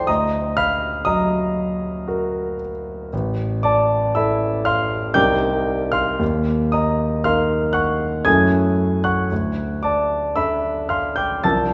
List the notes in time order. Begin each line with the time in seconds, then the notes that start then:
Already playing: F3 E4 A4 B4 C5 D5 G5 A5 C6 D6
0.07 D2 D#5 A#5 D#6
0.57 F5 B5 F6
1.05 F#3 D#5 A#5 D#6
2.08 F#4 A#4
3.13 A1
3.63 D5 A5 D6
4.15 E4 A4 E5 B5 E6
4.65 F5 C6 F6
5.14 C2 G3 C4 D#4 A#4 G5 D6 G6
5.92 F5 C6 F6
6.19 D#2
6.72 D#5 A#5 D#6
7.24 D#4 A#4 F5 C6 F6
7.73 F#5 C#6 F#6
8.25 F#2 A3 C#4 E4 A4 G#5 D#6 G#6
9.04 F#5 C#6 F#6
9.31 D2
9.83 D5 A5 D6
10.36 D4 A4 E5 B5 E6
10.89 F5 C6 F6
11.16 G5 D6 G6
11.44 C2 F3 C4 D4 A#4 A5 E6 A6